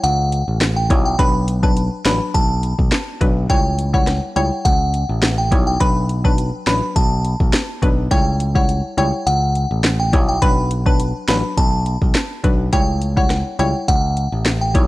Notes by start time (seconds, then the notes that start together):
0.04 C#2 F#5, closed hi-hat
0.32 closed hi-hat
0.48 A1
0.61 cross-stick, snare, clap, closed hi-hat
0.76 G5
0.90 B1 G3 E4 C#5, kick, closed hi-hat
1.05 G5
1.19 B1 F#3 D4 B4 B5, kick, closed hi-hat
1.48 closed hi-hat
1.63 F#3 D4 B4 A5, kick
1.77 closed hi-hat
2.05 A1 F#3 D4 B4 B5, snare, clap, closed hi-hat
2.34 B1 A5, kick, closed hi-hat
2.63 closed hi-hat
2.79 B1, kick
2.92 cross-stick, snare, clap, closed hi-hat
3.21 B1 F#3 D4 B4, kick, closed hi-hat
3.49 C#2 G3 E4 C#5 G5, kick, closed hi-hat
3.79 closed hi-hat
3.94 G3 E4 C#5 F#5, kick
4.07 cross-stick, snare, closed hi-hat
4.36 C#2 G3 E4 C#5 G5, closed hi-hat
4.65 C#2 F#5, kick, closed hi-hat
4.94 closed hi-hat
5.09 A1
5.22 cross-stick, snare, clap, closed hi-hat
5.38 G5
5.51 B1 G3 E4 C#5, kick, closed hi-hat
5.67 G5
5.80 B1 F#3 D4 B4 B5, kick, closed hi-hat
6.09 closed hi-hat
6.24 F#3 D4 B4 A5, kick
6.38 closed hi-hat
6.67 A1 F#3 D4 B4 B5, snare, clap, closed hi-hat
6.96 B1 A5, kick, closed hi-hat
7.25 closed hi-hat
7.40 B1, kick
7.53 cross-stick, snare, clap, closed hi-hat
7.82 B1 F#3 D4 B4, kick, closed hi-hat
8.11 C#2 G3 E4 C#5 G5, kick, closed hi-hat
8.40 closed hi-hat
8.55 G3 E4 C#5 F#5, kick
8.69 closed hi-hat
8.97 C#2 G3 E4 C#5 G5, closed hi-hat
9.27 C#2 F#5, closed hi-hat
9.55 closed hi-hat
9.71 A1
9.84 cross-stick, snare, clap, closed hi-hat
10.00 G5
10.13 B1 G3 E4 C#5, kick, closed hi-hat
10.29 G5
10.42 B1 F#3 D4 B4 B5, kick, closed hi-hat
10.71 closed hi-hat
10.86 F#3 D4 B4 A5, kick
11.00 closed hi-hat
11.28 A1 F#3 D4 B4 B5, snare, clap, closed hi-hat
11.57 B1 A5, kick, closed hi-hat
11.86 closed hi-hat
12.02 B1, kick
12.15 cross-stick, snare, clap, closed hi-hat
12.44 B1 F#3 D4 B4, kick, closed hi-hat
12.73 C#2 G3 E4 C#5 G5, kick, closed hi-hat
13.02 closed hi-hat
13.17 G3 E4 C#5 F#5, kick
13.30 cross-stick, snare, closed hi-hat
13.59 C#2 G3 E4 C#5 G5, closed hi-hat
13.88 C#2 F#5, kick, closed hi-hat
14.17 closed hi-hat
14.32 A1
14.46 cross-stick, snare, clap, closed hi-hat
14.61 G5
14.74 B1 G3 E4 C#5, kick, closed hi-hat